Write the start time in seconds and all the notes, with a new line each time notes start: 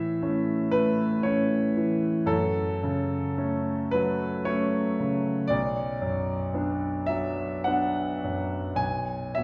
Already playing: A2 E3 E5
0.22 A3 C#4
0.71 A3 B4
1.23 A3 C#4 C#5
1.77 E3
2.26 F#2 A4
2.83 C#3
3.38 A3 C#4
3.91 F#3 B4
4.45 A3 C#4 C#5
5.00 C#3
5.48 B1 D5
6.02 F#2
6.54 B3 D4
7.07 F#3 E5
7.64 B3 D4 F#5
8.24 F#2
8.75 B1 G#5
9.35 B2 E5